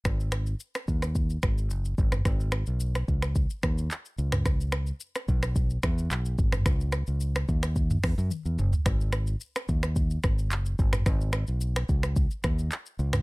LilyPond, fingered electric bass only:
\new Staff \with { instrumentName = "Fingered electric bass" } { \clef bass \time 4/4 \key gis \minor \tempo 4 = 109 gis,,4 r8 dis,4 gis,,8 fis,,8 gis,,8 | gis,,8. b,,8. cis,8. r16 dis,8 r8 cis,8~ | cis,4 r8 b,,4 e,8 b,,8 gis,,8 | cis,8. cis,8. dis,4 e,16 fis,16 r16 e,16 fis,,16 r16 |
gis,,4 r8 dis,4 gis,,8 fis,,8 gis,,8 | gis,,8. b,,8. cis,8. r16 dis,8 r8 cis,8 | }